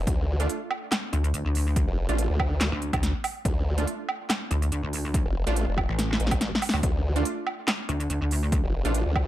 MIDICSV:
0, 0, Header, 1, 5, 480
1, 0, Start_track
1, 0, Key_signature, -1, "minor"
1, 0, Tempo, 422535
1, 81, Time_signature, 4, 2, 24, 8
1, 10535, End_track
2, 0, Start_track
2, 0, Title_t, "Synth stab"
2, 0, Program_c, 0, 62
2, 0, Note_on_c, 0, 57, 88
2, 0, Note_on_c, 0, 62, 80
2, 0, Note_on_c, 0, 65, 99
2, 420, Note_off_c, 0, 57, 0
2, 420, Note_off_c, 0, 62, 0
2, 420, Note_off_c, 0, 65, 0
2, 451, Note_on_c, 0, 57, 85
2, 451, Note_on_c, 0, 62, 80
2, 451, Note_on_c, 0, 65, 97
2, 2340, Note_off_c, 0, 57, 0
2, 2340, Note_off_c, 0, 62, 0
2, 2340, Note_off_c, 0, 65, 0
2, 2371, Note_on_c, 0, 57, 88
2, 2371, Note_on_c, 0, 62, 81
2, 2372, Note_on_c, 0, 65, 96
2, 4260, Note_off_c, 0, 57, 0
2, 4260, Note_off_c, 0, 62, 0
2, 4260, Note_off_c, 0, 65, 0
2, 4291, Note_on_c, 0, 57, 86
2, 4291, Note_on_c, 0, 62, 80
2, 4291, Note_on_c, 0, 65, 94
2, 6180, Note_off_c, 0, 57, 0
2, 6180, Note_off_c, 0, 62, 0
2, 6180, Note_off_c, 0, 65, 0
2, 6211, Note_on_c, 0, 57, 87
2, 6211, Note_on_c, 0, 65, 96
2, 6212, Note_on_c, 0, 62, 81
2, 8100, Note_off_c, 0, 57, 0
2, 8100, Note_off_c, 0, 62, 0
2, 8100, Note_off_c, 0, 65, 0
2, 8132, Note_on_c, 0, 57, 86
2, 8132, Note_on_c, 0, 62, 79
2, 8132, Note_on_c, 0, 65, 94
2, 10020, Note_off_c, 0, 57, 0
2, 10020, Note_off_c, 0, 62, 0
2, 10020, Note_off_c, 0, 65, 0
2, 10052, Note_on_c, 0, 57, 88
2, 10052, Note_on_c, 0, 62, 80
2, 10052, Note_on_c, 0, 65, 94
2, 10535, Note_off_c, 0, 57, 0
2, 10535, Note_off_c, 0, 62, 0
2, 10535, Note_off_c, 0, 65, 0
2, 10535, End_track
3, 0, Start_track
3, 0, Title_t, "Wobble bass"
3, 0, Program_c, 1, 39
3, 1281, Note_on_c, 1, 38, 97
3, 1503, Note_off_c, 1, 38, 0
3, 1521, Note_on_c, 1, 38, 100
3, 1631, Note_off_c, 1, 38, 0
3, 1651, Note_on_c, 1, 38, 98
3, 2110, Note_off_c, 1, 38, 0
3, 3092, Note_on_c, 1, 38, 97
3, 3311, Note_off_c, 1, 38, 0
3, 3331, Note_on_c, 1, 38, 101
3, 3550, Note_off_c, 1, 38, 0
3, 5121, Note_on_c, 1, 38, 98
3, 5343, Note_off_c, 1, 38, 0
3, 5361, Note_on_c, 1, 38, 100
3, 5471, Note_off_c, 1, 38, 0
3, 5491, Note_on_c, 1, 38, 100
3, 5950, Note_off_c, 1, 38, 0
3, 6691, Note_on_c, 1, 33, 97
3, 7023, Note_off_c, 1, 33, 0
3, 7652, Note_on_c, 1, 38, 101
3, 7744, Note_off_c, 1, 38, 0
3, 8961, Note_on_c, 1, 38, 98
3, 9183, Note_off_c, 1, 38, 0
3, 9201, Note_on_c, 1, 38, 102
3, 9311, Note_off_c, 1, 38, 0
3, 9331, Note_on_c, 1, 38, 99
3, 9791, Note_off_c, 1, 38, 0
3, 10535, End_track
4, 0, Start_track
4, 0, Title_t, "Wobble bass"
4, 0, Program_c, 2, 39
4, 80, Note_on_c, 2, 38, 98
4, 543, Note_off_c, 2, 38, 0
4, 2131, Note_on_c, 2, 29, 100
4, 2350, Note_off_c, 2, 29, 0
4, 2371, Note_on_c, 2, 33, 102
4, 2590, Note_off_c, 2, 33, 0
4, 2611, Note_on_c, 2, 38, 99
4, 3070, Note_off_c, 2, 38, 0
4, 3920, Note_on_c, 2, 38, 98
4, 4383, Note_off_c, 2, 38, 0
4, 5971, Note_on_c, 2, 29, 95
4, 6190, Note_off_c, 2, 29, 0
4, 6210, Note_on_c, 2, 33, 104
4, 6430, Note_off_c, 2, 33, 0
4, 6451, Note_on_c, 2, 29, 99
4, 6670, Note_off_c, 2, 29, 0
4, 7040, Note_on_c, 2, 33, 100
4, 7390, Note_off_c, 2, 33, 0
4, 7762, Note_on_c, 2, 38, 98
4, 8224, Note_off_c, 2, 38, 0
4, 9811, Note_on_c, 2, 29, 98
4, 10030, Note_off_c, 2, 29, 0
4, 10051, Note_on_c, 2, 33, 99
4, 10270, Note_off_c, 2, 33, 0
4, 10291, Note_on_c, 2, 38, 100
4, 10535, Note_off_c, 2, 38, 0
4, 10535, End_track
5, 0, Start_track
5, 0, Title_t, "Drums"
5, 80, Note_on_c, 9, 36, 121
5, 81, Note_on_c, 9, 42, 78
5, 194, Note_off_c, 9, 36, 0
5, 195, Note_off_c, 9, 42, 0
5, 452, Note_on_c, 9, 42, 51
5, 562, Note_off_c, 9, 42, 0
5, 562, Note_on_c, 9, 42, 78
5, 676, Note_off_c, 9, 42, 0
5, 801, Note_on_c, 9, 77, 86
5, 915, Note_off_c, 9, 77, 0
5, 1042, Note_on_c, 9, 38, 123
5, 1042, Note_on_c, 9, 39, 89
5, 1042, Note_on_c, 9, 42, 81
5, 1042, Note_on_c, 9, 77, 85
5, 1155, Note_off_c, 9, 38, 0
5, 1155, Note_off_c, 9, 39, 0
5, 1155, Note_off_c, 9, 42, 0
5, 1155, Note_off_c, 9, 77, 0
5, 1282, Note_on_c, 9, 42, 49
5, 1396, Note_off_c, 9, 42, 0
5, 1412, Note_on_c, 9, 42, 51
5, 1522, Note_off_c, 9, 42, 0
5, 1522, Note_on_c, 9, 42, 79
5, 1635, Note_off_c, 9, 42, 0
5, 1761, Note_on_c, 9, 46, 93
5, 1875, Note_off_c, 9, 46, 0
5, 2001, Note_on_c, 9, 36, 117
5, 2002, Note_on_c, 9, 42, 82
5, 2115, Note_off_c, 9, 36, 0
5, 2115, Note_off_c, 9, 42, 0
5, 2372, Note_on_c, 9, 42, 52
5, 2481, Note_off_c, 9, 42, 0
5, 2481, Note_on_c, 9, 42, 81
5, 2595, Note_off_c, 9, 42, 0
5, 2721, Note_on_c, 9, 36, 60
5, 2722, Note_on_c, 9, 77, 87
5, 2834, Note_off_c, 9, 36, 0
5, 2835, Note_off_c, 9, 77, 0
5, 2962, Note_on_c, 9, 38, 117
5, 2962, Note_on_c, 9, 39, 88
5, 2962, Note_on_c, 9, 42, 83
5, 3075, Note_off_c, 9, 38, 0
5, 3075, Note_off_c, 9, 39, 0
5, 3075, Note_off_c, 9, 42, 0
5, 3202, Note_on_c, 9, 42, 50
5, 3315, Note_off_c, 9, 42, 0
5, 3331, Note_on_c, 9, 36, 107
5, 3332, Note_on_c, 9, 42, 55
5, 3332, Note_on_c, 9, 77, 86
5, 3442, Note_off_c, 9, 42, 0
5, 3442, Note_on_c, 9, 38, 60
5, 3442, Note_on_c, 9, 42, 80
5, 3445, Note_off_c, 9, 36, 0
5, 3445, Note_off_c, 9, 77, 0
5, 3556, Note_off_c, 9, 38, 0
5, 3556, Note_off_c, 9, 42, 0
5, 3681, Note_on_c, 9, 46, 100
5, 3681, Note_on_c, 9, 77, 86
5, 3795, Note_off_c, 9, 46, 0
5, 3795, Note_off_c, 9, 77, 0
5, 3921, Note_on_c, 9, 36, 114
5, 3922, Note_on_c, 9, 42, 83
5, 4034, Note_off_c, 9, 36, 0
5, 4035, Note_off_c, 9, 42, 0
5, 4292, Note_on_c, 9, 42, 56
5, 4402, Note_off_c, 9, 42, 0
5, 4402, Note_on_c, 9, 42, 86
5, 4515, Note_off_c, 9, 42, 0
5, 4641, Note_on_c, 9, 77, 84
5, 4755, Note_off_c, 9, 77, 0
5, 4882, Note_on_c, 9, 38, 116
5, 4882, Note_on_c, 9, 39, 90
5, 4882, Note_on_c, 9, 42, 85
5, 4882, Note_on_c, 9, 77, 85
5, 4995, Note_off_c, 9, 38, 0
5, 4995, Note_off_c, 9, 39, 0
5, 4995, Note_off_c, 9, 42, 0
5, 4995, Note_off_c, 9, 77, 0
5, 5121, Note_on_c, 9, 42, 54
5, 5234, Note_off_c, 9, 42, 0
5, 5252, Note_on_c, 9, 42, 56
5, 5362, Note_off_c, 9, 42, 0
5, 5362, Note_on_c, 9, 42, 81
5, 5475, Note_off_c, 9, 42, 0
5, 5602, Note_on_c, 9, 46, 103
5, 5715, Note_off_c, 9, 46, 0
5, 5841, Note_on_c, 9, 36, 117
5, 5842, Note_on_c, 9, 42, 86
5, 5955, Note_off_c, 9, 36, 0
5, 5955, Note_off_c, 9, 42, 0
5, 6211, Note_on_c, 9, 42, 58
5, 6321, Note_off_c, 9, 42, 0
5, 6321, Note_on_c, 9, 42, 85
5, 6434, Note_off_c, 9, 42, 0
5, 6561, Note_on_c, 9, 36, 62
5, 6562, Note_on_c, 9, 77, 79
5, 6675, Note_off_c, 9, 36, 0
5, 6675, Note_off_c, 9, 77, 0
5, 6800, Note_on_c, 9, 38, 70
5, 6800, Note_on_c, 9, 42, 84
5, 6914, Note_off_c, 9, 38, 0
5, 6914, Note_off_c, 9, 42, 0
5, 6961, Note_on_c, 9, 38, 77
5, 7041, Note_on_c, 9, 42, 55
5, 7075, Note_off_c, 9, 38, 0
5, 7121, Note_on_c, 9, 38, 80
5, 7155, Note_off_c, 9, 42, 0
5, 7171, Note_on_c, 9, 42, 58
5, 7171, Note_on_c, 9, 77, 77
5, 7172, Note_on_c, 9, 36, 107
5, 7234, Note_off_c, 9, 38, 0
5, 7281, Note_off_c, 9, 42, 0
5, 7281, Note_on_c, 9, 38, 91
5, 7281, Note_on_c, 9, 42, 83
5, 7285, Note_off_c, 9, 77, 0
5, 7286, Note_off_c, 9, 36, 0
5, 7394, Note_off_c, 9, 38, 0
5, 7394, Note_off_c, 9, 42, 0
5, 7440, Note_on_c, 9, 38, 96
5, 7521, Note_on_c, 9, 46, 101
5, 7521, Note_on_c, 9, 77, 80
5, 7554, Note_off_c, 9, 38, 0
5, 7601, Note_on_c, 9, 38, 103
5, 7634, Note_off_c, 9, 46, 0
5, 7634, Note_off_c, 9, 77, 0
5, 7651, Note_on_c, 9, 77, 64
5, 7714, Note_off_c, 9, 38, 0
5, 7760, Note_on_c, 9, 42, 85
5, 7762, Note_on_c, 9, 36, 122
5, 7765, Note_off_c, 9, 77, 0
5, 7874, Note_off_c, 9, 42, 0
5, 7875, Note_off_c, 9, 36, 0
5, 8131, Note_on_c, 9, 42, 55
5, 8240, Note_off_c, 9, 42, 0
5, 8240, Note_on_c, 9, 42, 86
5, 8354, Note_off_c, 9, 42, 0
5, 8481, Note_on_c, 9, 77, 78
5, 8594, Note_off_c, 9, 77, 0
5, 8721, Note_on_c, 9, 38, 123
5, 8721, Note_on_c, 9, 39, 96
5, 8721, Note_on_c, 9, 42, 85
5, 8721, Note_on_c, 9, 77, 78
5, 8835, Note_off_c, 9, 38, 0
5, 8835, Note_off_c, 9, 39, 0
5, 8835, Note_off_c, 9, 42, 0
5, 8835, Note_off_c, 9, 77, 0
5, 8961, Note_on_c, 9, 42, 55
5, 9074, Note_off_c, 9, 42, 0
5, 9091, Note_on_c, 9, 42, 55
5, 9201, Note_off_c, 9, 42, 0
5, 9201, Note_on_c, 9, 42, 83
5, 9314, Note_off_c, 9, 42, 0
5, 9441, Note_on_c, 9, 46, 96
5, 9554, Note_off_c, 9, 46, 0
5, 9681, Note_on_c, 9, 36, 124
5, 9681, Note_on_c, 9, 42, 82
5, 9795, Note_off_c, 9, 36, 0
5, 9795, Note_off_c, 9, 42, 0
5, 10052, Note_on_c, 9, 42, 53
5, 10161, Note_off_c, 9, 42, 0
5, 10161, Note_on_c, 9, 42, 84
5, 10274, Note_off_c, 9, 42, 0
5, 10401, Note_on_c, 9, 36, 65
5, 10401, Note_on_c, 9, 77, 79
5, 10514, Note_off_c, 9, 77, 0
5, 10515, Note_off_c, 9, 36, 0
5, 10535, End_track
0, 0, End_of_file